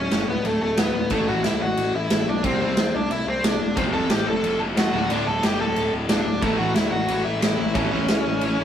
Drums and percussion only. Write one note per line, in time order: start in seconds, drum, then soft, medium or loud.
0.11 snare medium
0.11 crash medium
0.45 crash medium
0.77 snare loud
0.77 crash medium
1.10 kick medium
1.10 crash medium
1.44 snare medium
1.44 crash medium
1.77 crash medium
2.10 snare loud
2.10 crash medium
2.44 kick loud
2.44 crash medium
2.77 snare loud
2.77 crash medium
3.11 crash medium
3.44 snare loud
3.44 crash medium
3.77 kick loud
3.77 crash medium
4.10 snare loud
4.10 crash medium
4.44 crash medium
4.77 snare loud
4.77 crash medium
5.10 crash medium
5.43 snare medium
5.43 crash medium
5.76 crash medium
6.09 snare loud
6.09 crash medium
6.42 kick loud
6.42 crash medium
6.75 snare loud
6.75 crash medium
7.08 crash medium
7.42 snare loud
7.42 crash medium
7.75 kick loud
7.75 crash medium
8.08 snare loud
8.08 crash soft
8.41 crash medium